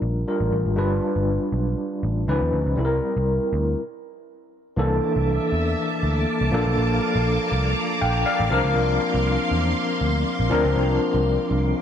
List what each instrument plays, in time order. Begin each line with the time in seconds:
Already playing: tine electric piano G3 D4 F4 A#4
0.02 picked electric bass A#1
0.27 tine electric piano G3 D4 F4 A#4
0.41 picked electric bass A1
0.52 picked electric bass A1
0.66 picked electric bass G#1
0.76 picked electric bass G1, tine electric piano G3 D4 F4 B4
1.16 picked electric bass G1
1.52 picked electric bass B1
2.03 picked electric bass A1
2.28 picked electric bass C#2, tine electric piano E3 C#4 D#4 B4
2.34 tine electric piano F3
2.42 picked electric bass D#2
2.53 picked electric bass D2
2.67 picked electric bass C#2
2.76 picked electric bass C2, tine electric piano G3 C4 E4 A4
2.85 tine electric piano A#4
3.17 picked electric bass C2
3.53 picked electric bass D2
4.76 picked electric bass C2, tine electric piano E3 A#3 D4 A4, string machine A#3 E5 A5 D6
5.16 picked electric bass C2
5.52 picked electric bass E2
6.03 picked electric bass D2
6.41 picked electric bass C2
6.51 picked electric bass A#1, tine electric piano F3 A#3 D4 A4, string machine F5
6.66 picked electric bass B1
6.78 picked electric bass A#1
7.16 picked electric bass A#1
7.52 picked electric bass C2
8.01 picked electric bass A#1, tine electric piano F5 G5
8.26 tine electric piano D5 F5
8.40 picked electric bass A1
8.50 picked electric bass C2, tine electric piano F3 C4 D4 A#4 F5, string machine C6
8.64 picked electric bass C#2
8.76 picked electric bass C2
9.15 picked electric bass C2
9.52 picked electric bass E2
10.01 picked electric bass D2
10.40 picked electric bass A#1
10.49 picked electric bass D2, tine electric piano F3 C4 D4 A#4
10.65 picked electric bass C#2
10.76 picked electric bass C2
11.15 picked electric bass C2
11.51 picked electric bass C2